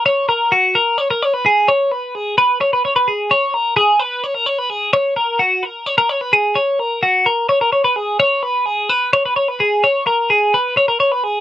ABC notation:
X:1
M:7/8
L:1/16
Q:1/4=129
K:F#mix
V:1 name="Clean electric guitar"
c2 A2 F2 A2 c A c B G2 | c2 B2 G2 B2 c B c B G2 | c2 A2 G2 B2 c A c B G2 | c2 A2 F2 A2 c A c B G2 |
c2 A2 F2 A2 c A c B G2 | c2 B2 G2 B2 c B c B G2 | c2 A2 G2 B2 c A c B G2 |]